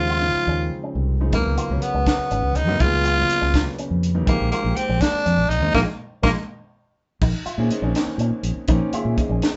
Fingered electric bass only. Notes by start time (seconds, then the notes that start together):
Already playing: D#2
0.36 muted fingered electric bass stroke
0.47 D#2
0.95 C2
1.33 C#2
1.46 C#2
1.70 C#2
1.94 C#2
2.19 muted fingered electric bass stroke
2.31 G#1
2.42 C#2
2.55 C#2
2.67 F#2
2.80 C#2
3.42 C#2
3.90 F2
4.27 A#1
4.40 A#1
4.64 A#1
4.89 A#1
5.14 muted fingered electric bass stroke
5.26 F2
5.37 A#1
5.49 A#1
5.61 D#2
5.75 A#1
6.23 A#1
7.21 A#1
7.46 muted fingered electric bass stroke
7.58 A#2
7.70 muted fingered electric bass stroke
7.82 A#1
8.06 muted fingered electric bass stroke
8.18 A#2
8.31 muted fingered electric bass stroke
8.43 A#1
8.68 A#1
8.92 muted fingered electric bass stroke
9.05 A#2
9.17 muted fingered electric bass stroke
9.29 A#1